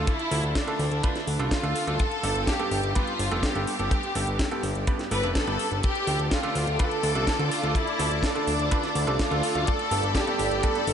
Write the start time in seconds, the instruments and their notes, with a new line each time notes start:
Already playing: grand piano D3 A3 D4 F4 A4
0.07 violin section E4, kick, closed hi-hat
0.19 closed hi-hat
0.31 analog synth bass D2, grand piano D3 A3 D4 F4 A4, open hi-hat
0.43 analog synth bass D2, closed hi-hat
0.55 violin section D4, kick, snare, closed hi-hat
0.67 grand piano D3 A3 D4 F4 A4, closed hi-hat
0.79 analog synth bass D2, open hi-hat
0.91 analog synth bass D2, closed hi-hat
1.03 grand piano D3 A3 D4 F4 B4, kick, closed hi-hat
1.16 snare, closed hi-hat
1.27 analog synth bass D2, open hi-hat
1.39 analog synth bass C2, grand piano D3 A3 D4 F4 A4, closed hi-hat
1.51 violin section F4, kick, snare, closed hi-hat
1.63 analog synth bass D2, grand piano D3 A3 D4 F4 A4, closed hi-hat
1.76 open hi-hat
1.87 analog synth bass D2, grand piano G2 A3 D4 F4 A4, closed hi-hat
1.99 violin section A4, kick, closed hi-hat
2.11 closed hi-hat
2.23 analog synth bass G1, grand piano G2 B3 D4 G4 A4, open hi-hat
2.35 analog synth bass G1, closed hi-hat
2.47 violin section G4, kick, snare, closed hi-hat
2.59 grand piano G2 B3 D4 G4 A4, closed hi-hat
2.71 analog synth bass G1, open hi-hat
2.83 analog synth bass G1, closed hi-hat
2.95 grand piano G2 B3 D4 G4 B4, violin section F4, kick, closed hi-hat
3.07 closed hi-hat
3.19 analog synth bass G1, open hi-hat
3.31 analog synth bass F1, grand piano G2 B3 D4 G4 A4, closed hi-hat
3.43 violin section G4, kick, snare, closed hi-hat
3.55 analog synth bass G1, grand piano G2 B3 D4 G4 A4, closed hi-hat
3.67 violin section G4, open hi-hat
3.79 analog synth bass G1, grand piano G2 B3 D4 G4 A4, closed hi-hat
3.91 kick, closed hi-hat
4.03 closed hi-hat
4.15 analog synth bass G1, grand piano G2 B3 D4 G4 A4, open hi-hat
4.27 analog synth bass G1
4.39 kick, snare, closed hi-hat
4.51 grand piano G2 B3 D4 G4 A4, closed hi-hat
4.63 analog synth bass G1, open hi-hat
4.75 analog synth bass G1, closed hi-hat
4.87 grand piano G2 B3 D4 G4 B4, kick, closed hi-hat
4.99 snare, closed hi-hat
5.11 analog synth bass G1, grand piano G2 B3 D4 G4 A4, violin section B4, open hi-hat
5.23 analog synth bass F1, grand piano G2 B3 D4 G4 A4, closed hi-hat
5.35 violin section A4, kick, snare, closed hi-hat
5.47 analog synth bass G1, grand piano G2 B3 D4 G4 B4, closed hi-hat
5.59 open hi-hat
5.71 analog synth bass G1, closed hi-hat
5.83 violin section G4, string machine A4 D5 A5 D6, kick, closed hi-hat
5.95 closed hi-hat
6.07 analog synth bass D2, grand piano D3 A3 D4 F4 A4, open hi-hat
6.19 analog synth bass D2, closed hi-hat
6.31 violin section F4, kick, snare, closed hi-hat
6.43 grand piano D3 A3 D4 F4 A4, closed hi-hat
6.55 analog synth bass D2, open hi-hat
6.67 analog synth bass D2, closed hi-hat
6.79 grand piano D3 A3 D4 F4 B4, violin section A4, kick, closed hi-hat
6.91 closed hi-hat
7.03 analog synth bass D2, open hi-hat
7.15 analog synth bass C2, grand piano D3 A3 D4 F4 A4, closed hi-hat
7.27 kick, snare, closed hi-hat
7.39 analog synth bass D2, grand piano D3 A3 D4 F4 A4, closed hi-hat
7.51 violin section F4, open hi-hat
7.63 analog synth bass D2, grand piano D3 A3 D4 F4 A4, closed hi-hat
7.75 violin section E4, kick, closed hi-hat
7.87 closed hi-hat
7.99 analog synth bass D2, grand piano D3 A3 D4 F4 A4, open hi-hat
8.11 analog synth bass D2, closed hi-hat
8.23 violin section D4, kick, snare, closed hi-hat
8.35 grand piano D3 A3 D4 F4 A4, closed hi-hat
8.47 analog synth bass D2, open hi-hat
8.59 analog synth bass D2, closed hi-hat
8.71 grand piano D3 A3 D4 F4 B4, kick, closed hi-hat
8.83 snare, closed hi-hat
8.95 analog synth bass D2, open hi-hat
9.07 analog synth bass C2, grand piano D3 A3 D4 F4 A4, closed hi-hat
9.19 violin section F4, kick, snare, closed hi-hat
9.31 analog synth bass D2, grand piano D3 A3 D4 F4 A4, closed hi-hat
9.43 open hi-hat
9.55 analog synth bass D2, grand piano G2 A3 D4 F4 A4, closed hi-hat
9.67 violin section A4, string machine G5 B5, kick, closed hi-hat
9.79 closed hi-hat
9.91 analog synth bass G1, grand piano G2 B3 D4 G4 A4, open hi-hat
10.03 analog synth bass G1, closed hi-hat
10.15 violin section G4, kick, snare, closed hi-hat
10.27 grand piano G2 B3 D4 G4 A4, closed hi-hat
10.39 analog synth bass G1, open hi-hat
10.51 analog synth bass G1, closed hi-hat
10.63 grand piano G2 B3 D4 G4 B4, violin section A4, kick, closed hi-hat
10.75 closed hi-hat
10.87 analog synth bass G1, open hi-hat